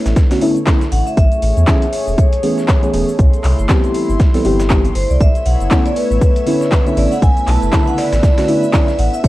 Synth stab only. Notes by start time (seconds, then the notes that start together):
Already playing: D3 A3 B3 C#4 E4
0.30 D3 A3 B3 C#4 F#4
0.41 D3 A3 B3 C#4 E4
0.66 D3 A3 B3 C#4 E4
1.67 E3 A3 B3 C#4 G#4
2.43 E3 A3 B3 C#4 G#4
2.82 E3 A3 B3 C#4 G#4
2.93 E3 A3 B3 C#4 G#4
3.68 E3 G3 B3 C4 G4
4.34 E3 G3 B3 C4 A4
4.44 E3 G3 B3 C4 G4
4.69 E3 G3 B3 C4 G4
5.70 D3 A3 B3 C#4 E4
6.46 D3 A3 B3 C#4 E4
6.86 D3 A3 B3 C#4 E4
6.96 D3 A3 B3 C#4 E4
7.72 C#3 D3 A3 B3 E4
8.37 D3 A3 B3 C#4 F#4
8.48 D3 A3 B3 C#4 E4
8.73 D3 A3 B3 C#4 E4